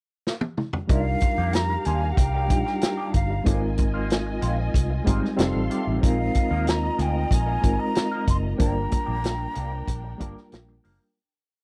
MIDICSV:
0, 0, Header, 1, 8, 480
1, 0, Start_track
1, 0, Key_signature, -3, "minor"
1, 0, Tempo, 642398
1, 666, Time_signature, 4, 2, 24, 8
1, 8694, End_track
2, 0, Start_track
2, 0, Title_t, "Flute"
2, 0, Program_c, 0, 73
2, 684, Note_on_c, 0, 77, 84
2, 1153, Note_on_c, 0, 82, 94
2, 1164, Note_off_c, 0, 77, 0
2, 1387, Note_on_c, 0, 80, 87
2, 1399, Note_off_c, 0, 82, 0
2, 1584, Note_on_c, 0, 78, 62
2, 1595, Note_off_c, 0, 80, 0
2, 1620, Note_on_c, 0, 79, 88
2, 1631, Note_off_c, 0, 78, 0
2, 2343, Note_off_c, 0, 79, 0
2, 2356, Note_on_c, 0, 77, 70
2, 2801, Note_off_c, 0, 77, 0
2, 4522, Note_on_c, 0, 77, 86
2, 5000, Note_on_c, 0, 82, 80
2, 5011, Note_off_c, 0, 77, 0
2, 5239, Note_on_c, 0, 79, 81
2, 5251, Note_off_c, 0, 82, 0
2, 5484, Note_on_c, 0, 80, 96
2, 5495, Note_off_c, 0, 79, 0
2, 5830, Note_on_c, 0, 82, 89
2, 5841, Note_off_c, 0, 80, 0
2, 6187, Note_off_c, 0, 82, 0
2, 6199, Note_on_c, 0, 84, 89
2, 6252, Note_off_c, 0, 84, 0
2, 6436, Note_on_c, 0, 82, 102
2, 7840, Note_off_c, 0, 82, 0
2, 8694, End_track
3, 0, Start_track
3, 0, Title_t, "String section"
3, 0, Program_c, 1, 48
3, 678, Note_on_c, 1, 67, 70
3, 679, Note_on_c, 1, 77, 69
3, 680, Note_on_c, 1, 82, 76
3, 2563, Note_off_c, 1, 67, 0
3, 2563, Note_off_c, 1, 77, 0
3, 2564, Note_off_c, 1, 82, 0
3, 2591, Note_on_c, 1, 75, 67
3, 2591, Note_on_c, 1, 80, 81
3, 2592, Note_on_c, 1, 65, 72
3, 3999, Note_off_c, 1, 75, 0
3, 3999, Note_off_c, 1, 80, 0
3, 4000, Note_off_c, 1, 65, 0
3, 4027, Note_on_c, 1, 69, 71
3, 4027, Note_on_c, 1, 77, 69
3, 4029, Note_on_c, 1, 84, 76
3, 4496, Note_off_c, 1, 69, 0
3, 4496, Note_off_c, 1, 77, 0
3, 4497, Note_off_c, 1, 84, 0
3, 4499, Note_on_c, 1, 65, 71
3, 4500, Note_on_c, 1, 75, 72
3, 4502, Note_on_c, 1, 82, 74
3, 6390, Note_off_c, 1, 65, 0
3, 6391, Note_off_c, 1, 75, 0
3, 6392, Note_off_c, 1, 82, 0
3, 6417, Note_on_c, 1, 79, 81
3, 6420, Note_on_c, 1, 62, 73
3, 6420, Note_on_c, 1, 70, 72
3, 8311, Note_off_c, 1, 79, 0
3, 8313, Note_off_c, 1, 62, 0
3, 8313, Note_off_c, 1, 70, 0
3, 8694, End_track
4, 0, Start_track
4, 0, Title_t, "Reed electric piano"
4, 0, Program_c, 2, 4
4, 654, Note_on_c, 2, 55, 62
4, 662, Note_on_c, 2, 62, 55
4, 667, Note_on_c, 2, 63, 59
4, 674, Note_on_c, 2, 65, 54
4, 681, Note_on_c, 2, 70, 67
4, 801, Control_c, 2, 64, 127
4, 1521, Note_off_c, 2, 55, 0
4, 1525, Note_off_c, 2, 62, 0
4, 1527, Note_off_c, 2, 63, 0
4, 1531, Note_off_c, 2, 65, 0
4, 1535, Note_off_c, 2, 70, 0
4, 1851, Note_on_c, 2, 55, 63
4, 1859, Note_on_c, 2, 62, 58
4, 1867, Note_on_c, 2, 63, 54
4, 1876, Note_on_c, 2, 65, 58
4, 1882, Note_on_c, 2, 67, 68
4, 2504, Note_off_c, 2, 55, 0
4, 2508, Note_off_c, 2, 62, 0
4, 2512, Note_off_c, 2, 63, 0
4, 2516, Note_off_c, 2, 65, 0
4, 2520, Note_off_c, 2, 67, 0
4, 2568, Note_on_c, 2, 56, 64
4, 2576, Note_on_c, 2, 60, 56
4, 2583, Note_on_c, 2, 63, 60
4, 2590, Note_on_c, 2, 65, 56
4, 2596, Control_c, 2, 64, 0
4, 2596, Note_on_c, 2, 69, 54
4, 2640, Note_off_c, 2, 69, 0
4, 2644, Note_on_c, 2, 70, 68
4, 2740, Control_c, 2, 64, 127
4, 3437, Note_off_c, 2, 56, 0
4, 3441, Note_off_c, 2, 60, 0
4, 3445, Note_off_c, 2, 63, 0
4, 3448, Note_off_c, 2, 65, 0
4, 3475, Note_off_c, 2, 70, 0
4, 3770, Note_on_c, 2, 56, 75
4, 3781, Note_on_c, 2, 60, 66
4, 3787, Note_on_c, 2, 63, 75
4, 3794, Note_on_c, 2, 65, 71
4, 3800, Note_on_c, 2, 55, 85
4, 4001, Note_off_c, 2, 55, 0
4, 4008, Note_off_c, 2, 60, 0
4, 4010, Note_on_c, 2, 55, 82
4, 4013, Note_off_c, 2, 63, 0
4, 4017, Note_on_c, 2, 60, 78
4, 4018, Note_off_c, 2, 56, 0
4, 4021, Note_off_c, 2, 65, 0
4, 4022, Note_on_c, 2, 63, 73
4, 4030, Note_on_c, 2, 65, 75
4, 4036, Control_c, 2, 64, 0
4, 4038, Note_on_c, 2, 69, 86
4, 4148, Control_c, 2, 64, 127
4, 4447, Note_off_c, 2, 55, 0
4, 4451, Note_off_c, 2, 60, 0
4, 4454, Note_off_c, 2, 63, 0
4, 4458, Note_off_c, 2, 65, 0
4, 4461, Note_off_c, 2, 69, 0
4, 4494, Note_on_c, 2, 56, 62
4, 4500, Note_on_c, 2, 60, 59
4, 4507, Note_on_c, 2, 63, 61
4, 4514, Note_on_c, 2, 65, 57
4, 4515, Control_c, 2, 64, 0
4, 4522, Note_on_c, 2, 70, 72
4, 4665, Control_c, 2, 64, 127
4, 5359, Note_off_c, 2, 56, 0
4, 5362, Note_off_c, 2, 60, 0
4, 5365, Note_off_c, 2, 63, 0
4, 5369, Note_off_c, 2, 65, 0
4, 5373, Note_off_c, 2, 70, 0
4, 5688, Note_on_c, 2, 56, 64
4, 5694, Note_on_c, 2, 60, 60
4, 5700, Note_on_c, 2, 63, 55
4, 5708, Note_on_c, 2, 65, 58
4, 5714, Note_on_c, 2, 70, 72
4, 6341, Note_off_c, 2, 56, 0
4, 6344, Note_off_c, 2, 60, 0
4, 6347, Note_off_c, 2, 63, 0
4, 6351, Note_off_c, 2, 65, 0
4, 6354, Note_off_c, 2, 70, 0
4, 6413, Note_on_c, 2, 55, 59
4, 6417, Note_on_c, 2, 58, 56
4, 6425, Note_on_c, 2, 62, 59
4, 6432, Note_on_c, 2, 65, 57
4, 6434, Control_c, 2, 64, 0
4, 6440, Note_on_c, 2, 70, 69
4, 6570, Control_c, 2, 64, 127
4, 7278, Note_off_c, 2, 55, 0
4, 7280, Note_off_c, 2, 58, 0
4, 7285, Note_off_c, 2, 62, 0
4, 7288, Note_off_c, 2, 65, 0
4, 7292, Note_off_c, 2, 70, 0
4, 7605, Note_on_c, 2, 55, 77
4, 7613, Note_on_c, 2, 58, 71
4, 7620, Note_on_c, 2, 62, 69
4, 7627, Note_on_c, 2, 65, 72
4, 7634, Note_on_c, 2, 70, 86
4, 8260, Note_off_c, 2, 55, 0
4, 8264, Note_off_c, 2, 58, 0
4, 8268, Note_off_c, 2, 62, 0
4, 8271, Note_off_c, 2, 65, 0
4, 8274, Note_off_c, 2, 70, 0
4, 8352, Control_c, 2, 64, 0
4, 8694, End_track
5, 0, Start_track
5, 0, Title_t, "Clean electric guitar"
5, 0, Program_c, 3, 27
5, 667, Note_on_c, 3, 51, 59
5, 671, Note_on_c, 3, 58, 67
5, 676, Note_on_c, 3, 62, 60
5, 680, Note_on_c, 3, 65, 68
5, 784, Note_off_c, 3, 65, 0
5, 791, Note_off_c, 3, 62, 0
5, 795, Note_off_c, 3, 58, 0
5, 812, Note_off_c, 3, 51, 0
5, 1032, Note_on_c, 3, 67, 50
5, 1039, Note_on_c, 3, 62, 49
5, 1044, Note_on_c, 3, 58, 46
5, 1050, Note_on_c, 3, 51, 43
5, 1143, Note_off_c, 3, 67, 0
5, 1144, Note_off_c, 3, 51, 0
5, 1147, Note_off_c, 3, 62, 0
5, 1149, Note_off_c, 3, 58, 0
5, 1386, Note_on_c, 3, 51, 63
5, 1392, Note_on_c, 3, 58, 58
5, 1398, Note_on_c, 3, 62, 65
5, 1403, Note_on_c, 3, 65, 69
5, 1504, Note_off_c, 3, 65, 0
5, 1511, Note_off_c, 3, 62, 0
5, 1517, Note_off_c, 3, 58, 0
5, 1531, Note_off_c, 3, 51, 0
5, 1747, Note_on_c, 3, 67, 62
5, 1753, Note_on_c, 3, 62, 62
5, 1758, Note_on_c, 3, 58, 55
5, 1763, Note_on_c, 3, 51, 55
5, 1860, Note_off_c, 3, 51, 0
5, 1866, Note_off_c, 3, 58, 0
5, 1867, Note_off_c, 3, 62, 0
5, 1877, Note_off_c, 3, 67, 0
5, 2222, Note_on_c, 3, 67, 60
5, 2229, Note_on_c, 3, 62, 54
5, 2234, Note_on_c, 3, 58, 54
5, 2240, Note_on_c, 3, 51, 49
5, 2335, Note_off_c, 3, 51, 0
5, 2337, Note_off_c, 3, 58, 0
5, 2340, Note_off_c, 3, 62, 0
5, 2349, Note_off_c, 3, 67, 0
5, 2582, Note_on_c, 3, 53, 69
5, 2587, Note_on_c, 3, 58, 72
5, 2590, Note_on_c, 3, 60, 66
5, 2595, Note_on_c, 3, 67, 68
5, 2699, Note_off_c, 3, 60, 0
5, 2699, Note_off_c, 3, 67, 0
5, 2704, Note_off_c, 3, 58, 0
5, 2729, Note_off_c, 3, 53, 0
5, 2943, Note_on_c, 3, 65, 49
5, 2948, Note_on_c, 3, 60, 44
5, 2954, Note_on_c, 3, 58, 39
5, 2957, Note_on_c, 3, 53, 36
5, 3051, Note_off_c, 3, 53, 0
5, 3056, Note_off_c, 3, 58, 0
5, 3058, Note_off_c, 3, 65, 0
5, 3061, Note_off_c, 3, 60, 0
5, 3298, Note_on_c, 3, 53, 61
5, 3302, Note_on_c, 3, 58, 60
5, 3307, Note_on_c, 3, 60, 74
5, 3310, Note_on_c, 3, 65, 72
5, 3412, Note_off_c, 3, 65, 0
5, 3417, Note_off_c, 3, 60, 0
5, 3424, Note_off_c, 3, 58, 0
5, 3447, Note_off_c, 3, 53, 0
5, 3778, Note_on_c, 3, 53, 59
5, 3783, Note_on_c, 3, 58, 73
5, 3788, Note_on_c, 3, 60, 77
5, 3794, Note_on_c, 3, 65, 73
5, 3888, Note_off_c, 3, 65, 0
5, 3892, Note_off_c, 3, 60, 0
5, 3897, Note_off_c, 3, 58, 0
5, 3927, Note_off_c, 3, 53, 0
5, 4258, Note_on_c, 3, 51, 53
5, 4265, Note_on_c, 3, 57, 54
5, 4267, Note_on_c, 3, 60, 57
5, 4273, Note_on_c, 3, 67, 58
5, 4365, Note_off_c, 3, 67, 0
5, 4369, Note_off_c, 3, 60, 0
5, 4374, Note_on_c, 3, 67, 51
5, 4375, Note_off_c, 3, 51, 0
5, 4377, Note_off_c, 3, 57, 0
5, 4378, Note_on_c, 3, 60, 48
5, 4386, Note_on_c, 3, 57, 44
5, 4390, Note_on_c, 3, 51, 45
5, 4491, Note_off_c, 3, 51, 0
5, 4493, Note_off_c, 3, 67, 0
5, 4494, Note_on_c, 3, 53, 61
5, 4495, Note_off_c, 3, 60, 0
5, 4497, Note_off_c, 3, 57, 0
5, 4500, Note_on_c, 3, 58, 63
5, 4505, Note_on_c, 3, 63, 56
5, 4510, Note_on_c, 3, 68, 70
5, 4610, Note_off_c, 3, 68, 0
5, 4616, Note_off_c, 3, 63, 0
5, 4622, Note_off_c, 3, 58, 0
5, 4644, Note_off_c, 3, 53, 0
5, 4862, Note_on_c, 3, 70, 49
5, 4868, Note_on_c, 3, 63, 46
5, 4876, Note_on_c, 3, 58, 46
5, 4879, Note_on_c, 3, 53, 44
5, 4973, Note_off_c, 3, 53, 0
5, 4977, Note_off_c, 3, 70, 0
5, 4978, Note_off_c, 3, 58, 0
5, 4980, Note_off_c, 3, 63, 0
5, 5219, Note_on_c, 3, 53, 65
5, 5225, Note_on_c, 3, 58, 66
5, 5229, Note_on_c, 3, 63, 65
5, 5232, Note_on_c, 3, 68, 72
5, 5331, Note_off_c, 3, 68, 0
5, 5337, Note_off_c, 3, 63, 0
5, 5341, Note_off_c, 3, 58, 0
5, 5367, Note_off_c, 3, 53, 0
5, 5574, Note_on_c, 3, 70, 63
5, 5581, Note_on_c, 3, 63, 67
5, 5589, Note_on_c, 3, 58, 54
5, 5590, Note_on_c, 3, 53, 50
5, 5694, Note_off_c, 3, 53, 0
5, 5696, Note_off_c, 3, 58, 0
5, 5701, Note_off_c, 3, 63, 0
5, 5711, Note_off_c, 3, 70, 0
5, 6064, Note_on_c, 3, 70, 62
5, 6070, Note_on_c, 3, 63, 57
5, 6076, Note_on_c, 3, 58, 59
5, 6082, Note_on_c, 3, 53, 53
5, 6176, Note_off_c, 3, 53, 0
5, 6178, Note_off_c, 3, 58, 0
5, 6180, Note_off_c, 3, 63, 0
5, 6190, Note_off_c, 3, 70, 0
5, 6413, Note_on_c, 3, 53, 67
5, 6421, Note_on_c, 3, 58, 73
5, 6426, Note_on_c, 3, 62, 78
5, 6430, Note_on_c, 3, 70, 74
5, 6531, Note_off_c, 3, 62, 0
5, 6532, Note_off_c, 3, 70, 0
5, 6535, Note_off_c, 3, 58, 0
5, 6563, Note_off_c, 3, 53, 0
5, 6773, Note_on_c, 3, 67, 49
5, 6777, Note_on_c, 3, 62, 46
5, 6784, Note_on_c, 3, 58, 43
5, 6787, Note_on_c, 3, 53, 43
5, 6887, Note_off_c, 3, 53, 0
5, 6892, Note_off_c, 3, 67, 0
5, 6893, Note_off_c, 3, 58, 0
5, 6894, Note_off_c, 3, 62, 0
5, 7128, Note_on_c, 3, 53, 64
5, 7135, Note_on_c, 3, 58, 63
5, 7140, Note_on_c, 3, 62, 68
5, 7143, Note_on_c, 3, 67, 72
5, 7249, Note_off_c, 3, 67, 0
5, 7253, Note_off_c, 3, 62, 0
5, 7257, Note_off_c, 3, 58, 0
5, 7281, Note_off_c, 3, 53, 0
5, 7617, Note_on_c, 3, 53, 64
5, 7622, Note_on_c, 3, 58, 80
5, 7624, Note_on_c, 3, 62, 80
5, 7629, Note_on_c, 3, 67, 73
5, 7735, Note_off_c, 3, 67, 0
5, 7738, Note_off_c, 3, 62, 0
5, 7743, Note_off_c, 3, 58, 0
5, 7765, Note_off_c, 3, 53, 0
5, 8100, Note_on_c, 3, 53, 69
5, 8105, Note_on_c, 3, 58, 73
5, 8108, Note_on_c, 3, 62, 76
5, 8115, Note_on_c, 3, 70, 79
5, 8217, Note_off_c, 3, 62, 0
5, 8217, Note_off_c, 3, 70, 0
5, 8221, Note_off_c, 3, 58, 0
5, 8247, Note_off_c, 3, 53, 0
5, 8694, End_track
6, 0, Start_track
6, 0, Title_t, "Fingered electric bass"
6, 0, Program_c, 4, 33
6, 670, Note_on_c, 4, 36, 88
6, 856, Note_off_c, 4, 36, 0
6, 1030, Note_on_c, 4, 41, 75
6, 1310, Note_off_c, 4, 41, 0
6, 1393, Note_on_c, 4, 39, 76
6, 1578, Note_off_c, 4, 39, 0
6, 1624, Note_on_c, 4, 36, 80
6, 1871, Note_off_c, 4, 36, 0
6, 1871, Note_on_c, 4, 34, 86
6, 1963, Note_off_c, 4, 34, 0
6, 2347, Note_on_c, 4, 31, 66
6, 2535, Note_off_c, 4, 31, 0
6, 2590, Note_on_c, 4, 32, 88
6, 3278, Note_off_c, 4, 32, 0
6, 3307, Note_on_c, 4, 34, 83
6, 3494, Note_off_c, 4, 34, 0
6, 3544, Note_on_c, 4, 36, 79
6, 3732, Note_off_c, 4, 36, 0
6, 3790, Note_on_c, 4, 32, 84
6, 3882, Note_off_c, 4, 32, 0
6, 4027, Note_on_c, 4, 29, 86
6, 4120, Note_off_c, 4, 29, 0
6, 4144, Note_on_c, 4, 33, 82
6, 4238, Note_off_c, 4, 33, 0
6, 4388, Note_on_c, 4, 33, 70
6, 4480, Note_off_c, 4, 33, 0
6, 4507, Note_on_c, 4, 34, 87
6, 4694, Note_off_c, 4, 34, 0
6, 4864, Note_on_c, 4, 39, 75
6, 5145, Note_off_c, 4, 39, 0
6, 5221, Note_on_c, 4, 38, 82
6, 5410, Note_off_c, 4, 38, 0
6, 5461, Note_on_c, 4, 34, 81
6, 5650, Note_off_c, 4, 34, 0
6, 5706, Note_on_c, 4, 32, 82
6, 5799, Note_off_c, 4, 32, 0
6, 6183, Note_on_c, 4, 30, 72
6, 6371, Note_off_c, 4, 30, 0
6, 6428, Note_on_c, 4, 31, 91
6, 6614, Note_off_c, 4, 31, 0
6, 6785, Note_on_c, 4, 34, 80
6, 7065, Note_off_c, 4, 34, 0
6, 7147, Note_on_c, 4, 36, 85
6, 7333, Note_off_c, 4, 36, 0
6, 7382, Note_on_c, 4, 34, 76
6, 7570, Note_off_c, 4, 34, 0
6, 7630, Note_on_c, 4, 31, 84
6, 7721, Note_off_c, 4, 31, 0
6, 7867, Note_on_c, 4, 34, 85
6, 8053, Note_off_c, 4, 34, 0
6, 8109, Note_on_c, 4, 30, 68
6, 8201, Note_off_c, 4, 30, 0
6, 8694, End_track
7, 0, Start_track
7, 0, Title_t, "Muted clean electric guitar strokes"
7, 793, Note_on_c, 9, 29, 35
7, 868, Note_off_c, 9, 29, 0
7, 914, Note_on_c, 9, 29, 30
7, 988, Note_off_c, 9, 29, 0
7, 1153, Note_on_c, 9, 29, 35
7, 1228, Note_off_c, 9, 29, 0
7, 1271, Note_on_c, 9, 29, 34
7, 1346, Note_off_c, 9, 29, 0
7, 1513, Note_on_c, 9, 29, 30
7, 1588, Note_off_c, 9, 29, 0
7, 1632, Note_on_c, 9, 29, 33
7, 1707, Note_off_c, 9, 29, 0
7, 1869, Note_on_c, 9, 29, 34
7, 1944, Note_off_c, 9, 29, 0
7, 1990, Note_on_c, 9, 29, 36
7, 2065, Note_off_c, 9, 29, 0
7, 2108, Note_on_c, 9, 29, 26
7, 2183, Note_off_c, 9, 29, 0
7, 2344, Note_on_c, 9, 29, 31
7, 2419, Note_off_c, 9, 29, 0
7, 2468, Note_on_c, 9, 29, 42
7, 2543, Note_off_c, 9, 29, 0
7, 2702, Note_on_c, 9, 29, 33
7, 2777, Note_off_c, 9, 29, 0
7, 2822, Note_on_c, 9, 29, 37
7, 2897, Note_off_c, 9, 29, 0
7, 3060, Note_on_c, 9, 29, 35
7, 3134, Note_off_c, 9, 29, 0
7, 3186, Note_on_c, 9, 29, 33
7, 3261, Note_off_c, 9, 29, 0
7, 3421, Note_on_c, 9, 29, 30
7, 3496, Note_off_c, 9, 29, 0
7, 3661, Note_on_c, 9, 29, 36
7, 3736, Note_off_c, 9, 29, 0
7, 3897, Note_on_c, 9, 29, 36
7, 3972, Note_off_c, 9, 29, 0
7, 4014, Note_on_c, 9, 29, 29
7, 4088, Note_off_c, 9, 29, 0
7, 4135, Note_on_c, 9, 29, 30
7, 4210, Note_off_c, 9, 29, 0
7, 4619, Note_on_c, 9, 29, 44
7, 4693, Note_off_c, 9, 29, 0
7, 4741, Note_on_c, 9, 29, 33
7, 4816, Note_off_c, 9, 29, 0
7, 4982, Note_on_c, 9, 29, 33
7, 5056, Note_off_c, 9, 29, 0
7, 5107, Note_on_c, 9, 29, 33
7, 5182, Note_off_c, 9, 29, 0
7, 5340, Note_on_c, 9, 29, 33
7, 5415, Note_off_c, 9, 29, 0
7, 5459, Note_on_c, 9, 29, 31
7, 5534, Note_off_c, 9, 29, 0
7, 5702, Note_on_c, 9, 29, 30
7, 5777, Note_off_c, 9, 29, 0
7, 5823, Note_on_c, 9, 29, 44
7, 5898, Note_off_c, 9, 29, 0
7, 5942, Note_on_c, 9, 29, 29
7, 6017, Note_off_c, 9, 29, 0
7, 6185, Note_on_c, 9, 29, 27
7, 6260, Note_off_c, 9, 29, 0
7, 6300, Note_on_c, 9, 29, 34
7, 6375, Note_off_c, 9, 29, 0
7, 6535, Note_on_c, 9, 29, 38
7, 6610, Note_off_c, 9, 29, 0
7, 6652, Note_on_c, 9, 29, 39
7, 6727, Note_off_c, 9, 29, 0
7, 6896, Note_on_c, 9, 29, 33
7, 6970, Note_off_c, 9, 29, 0
7, 7012, Note_on_c, 9, 29, 34
7, 7087, Note_off_c, 9, 29, 0
7, 7258, Note_on_c, 9, 29, 37
7, 7333, Note_off_c, 9, 29, 0
7, 7499, Note_on_c, 9, 29, 37
7, 7574, Note_off_c, 9, 29, 0
7, 7744, Note_on_c, 9, 29, 40
7, 7818, Note_off_c, 9, 29, 0
7, 7863, Note_on_c, 9, 29, 36
7, 7938, Note_off_c, 9, 29, 0
7, 7985, Note_on_c, 9, 29, 35
7, 8060, Note_off_c, 9, 29, 0
7, 8220, Note_on_c, 9, 29, 31
7, 8295, Note_off_c, 9, 29, 0
7, 8694, End_track
8, 0, Start_track
8, 0, Title_t, "Drums"
8, 200, Note_on_c, 9, 38, 63
8, 275, Note_off_c, 9, 38, 0
8, 306, Note_on_c, 9, 48, 72
8, 380, Note_off_c, 9, 48, 0
8, 429, Note_on_c, 9, 47, 70
8, 504, Note_off_c, 9, 47, 0
8, 546, Note_on_c, 9, 43, 84
8, 620, Note_off_c, 9, 43, 0
8, 668, Note_on_c, 9, 36, 94
8, 668, Note_on_c, 9, 42, 73
8, 743, Note_off_c, 9, 36, 0
8, 743, Note_off_c, 9, 42, 0
8, 900, Note_on_c, 9, 42, 64
8, 911, Note_on_c, 9, 36, 76
8, 975, Note_off_c, 9, 42, 0
8, 985, Note_off_c, 9, 36, 0
8, 1144, Note_on_c, 9, 42, 73
8, 1156, Note_on_c, 9, 38, 91
8, 1219, Note_off_c, 9, 42, 0
8, 1231, Note_off_c, 9, 38, 0
8, 1382, Note_on_c, 9, 42, 71
8, 1456, Note_off_c, 9, 42, 0
8, 1624, Note_on_c, 9, 36, 75
8, 1628, Note_on_c, 9, 42, 79
8, 1698, Note_off_c, 9, 36, 0
8, 1702, Note_off_c, 9, 42, 0
8, 1868, Note_on_c, 9, 42, 65
8, 1869, Note_on_c, 9, 36, 85
8, 1943, Note_off_c, 9, 42, 0
8, 1944, Note_off_c, 9, 36, 0
8, 1994, Note_on_c, 9, 38, 26
8, 2068, Note_off_c, 9, 38, 0
8, 2103, Note_on_c, 9, 42, 79
8, 2114, Note_on_c, 9, 38, 99
8, 2178, Note_off_c, 9, 42, 0
8, 2189, Note_off_c, 9, 38, 0
8, 2344, Note_on_c, 9, 42, 58
8, 2348, Note_on_c, 9, 36, 73
8, 2419, Note_off_c, 9, 42, 0
8, 2422, Note_off_c, 9, 36, 0
8, 2587, Note_on_c, 9, 42, 77
8, 2588, Note_on_c, 9, 36, 95
8, 2661, Note_off_c, 9, 42, 0
8, 2663, Note_off_c, 9, 36, 0
8, 2822, Note_on_c, 9, 42, 67
8, 2830, Note_on_c, 9, 36, 78
8, 2896, Note_off_c, 9, 42, 0
8, 2905, Note_off_c, 9, 36, 0
8, 3064, Note_on_c, 9, 42, 72
8, 3077, Note_on_c, 9, 38, 94
8, 3139, Note_off_c, 9, 42, 0
8, 3151, Note_off_c, 9, 38, 0
8, 3303, Note_on_c, 9, 42, 75
8, 3378, Note_off_c, 9, 42, 0
8, 3543, Note_on_c, 9, 36, 69
8, 3550, Note_on_c, 9, 42, 83
8, 3618, Note_off_c, 9, 36, 0
8, 3625, Note_off_c, 9, 42, 0
8, 3787, Note_on_c, 9, 42, 70
8, 3788, Note_on_c, 9, 36, 84
8, 3862, Note_off_c, 9, 42, 0
8, 3863, Note_off_c, 9, 36, 0
8, 3920, Note_on_c, 9, 38, 27
8, 3995, Note_off_c, 9, 38, 0
8, 4023, Note_on_c, 9, 42, 79
8, 4035, Note_on_c, 9, 38, 97
8, 4098, Note_off_c, 9, 42, 0
8, 4109, Note_off_c, 9, 38, 0
8, 4265, Note_on_c, 9, 42, 64
8, 4340, Note_off_c, 9, 42, 0
8, 4507, Note_on_c, 9, 36, 92
8, 4509, Note_on_c, 9, 42, 73
8, 4582, Note_off_c, 9, 36, 0
8, 4584, Note_off_c, 9, 42, 0
8, 4742, Note_on_c, 9, 42, 64
8, 4748, Note_on_c, 9, 36, 73
8, 4817, Note_off_c, 9, 42, 0
8, 4823, Note_off_c, 9, 36, 0
8, 4984, Note_on_c, 9, 42, 76
8, 4996, Note_on_c, 9, 38, 100
8, 5059, Note_off_c, 9, 42, 0
8, 5071, Note_off_c, 9, 38, 0
8, 5224, Note_on_c, 9, 42, 75
8, 5299, Note_off_c, 9, 42, 0
8, 5460, Note_on_c, 9, 36, 69
8, 5467, Note_on_c, 9, 42, 87
8, 5535, Note_off_c, 9, 36, 0
8, 5541, Note_off_c, 9, 42, 0
8, 5706, Note_on_c, 9, 36, 79
8, 5706, Note_on_c, 9, 42, 65
8, 5780, Note_off_c, 9, 36, 0
8, 5781, Note_off_c, 9, 42, 0
8, 5942, Note_on_c, 9, 42, 79
8, 5953, Note_on_c, 9, 38, 105
8, 6017, Note_off_c, 9, 42, 0
8, 6028, Note_off_c, 9, 38, 0
8, 6183, Note_on_c, 9, 42, 62
8, 6184, Note_on_c, 9, 36, 70
8, 6258, Note_off_c, 9, 36, 0
8, 6258, Note_off_c, 9, 42, 0
8, 6423, Note_on_c, 9, 42, 74
8, 6424, Note_on_c, 9, 36, 93
8, 6498, Note_off_c, 9, 42, 0
8, 6499, Note_off_c, 9, 36, 0
8, 6661, Note_on_c, 9, 42, 67
8, 6668, Note_on_c, 9, 36, 81
8, 6736, Note_off_c, 9, 42, 0
8, 6743, Note_off_c, 9, 36, 0
8, 6903, Note_on_c, 9, 42, 76
8, 6915, Note_on_c, 9, 38, 97
8, 6977, Note_off_c, 9, 42, 0
8, 6989, Note_off_c, 9, 38, 0
8, 7138, Note_on_c, 9, 42, 71
8, 7212, Note_off_c, 9, 42, 0
8, 7379, Note_on_c, 9, 36, 75
8, 7383, Note_on_c, 9, 42, 83
8, 7454, Note_off_c, 9, 36, 0
8, 7458, Note_off_c, 9, 42, 0
8, 7626, Note_on_c, 9, 36, 77
8, 7626, Note_on_c, 9, 42, 69
8, 7700, Note_off_c, 9, 36, 0
8, 7700, Note_off_c, 9, 42, 0
8, 7750, Note_on_c, 9, 38, 29
8, 7825, Note_off_c, 9, 38, 0
8, 7861, Note_on_c, 9, 42, 85
8, 7872, Note_on_c, 9, 38, 104
8, 7936, Note_off_c, 9, 42, 0
8, 7947, Note_off_c, 9, 38, 0
8, 8103, Note_on_c, 9, 46, 57
8, 8178, Note_off_c, 9, 46, 0
8, 8694, End_track
0, 0, End_of_file